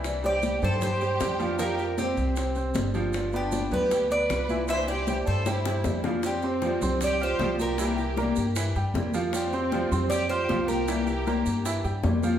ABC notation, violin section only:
X:1
M:4/4
L:1/8
Q:1/4=155
K:Cmix
V:1 name="Violin section"
z G2 A G4 | G2 C4 z2 | z D2 G2 =B3 | c G2 A E3 z |
C4 G G2 G- | G4- G z3 | C4 G G2 G- | G4- G z3 |]